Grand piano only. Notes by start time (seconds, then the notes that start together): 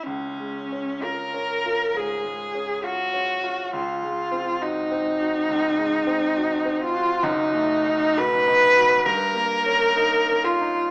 0.06 C#2
0.39 G#3
0.72 C#4
1.04 F4
1.34 C#4
1.66 F4
1.94 G#2
2.24 G#3
2.55 C#4
2.83 F4
3.14 C#4
3.44 F4
3.73 C#2
4.03 G#3
4.32 C4
4.61 F#4
4.91 C4
5.20 F#4
5.48 C#2
5.77 G#3
6.07 C4
6.36 F#4
6.65 C4
6.94 F#4
7.22 F#1 F#2
7.55 A3
7.86 D#4
8.17 F#4
8.47 D#4
8.77 F#4
9.06 G2
9.35 A#3
9.66 C#4
9.96 D#4
10.29 C#4
10.61 D#4